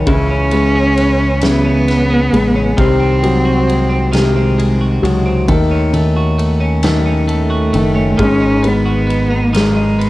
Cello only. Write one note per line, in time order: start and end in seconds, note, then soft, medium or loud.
0.09 1.46 C#4 loud
1.45 2.81 B3 loud
2.79 4.14 C4 loud
4.16 5.12 G#3 medium
7.31 8.24 A3 loud
8.22 8.70 C#4 loud
8.68 9.56 B3 medium
9.56 10.10 G#3 medium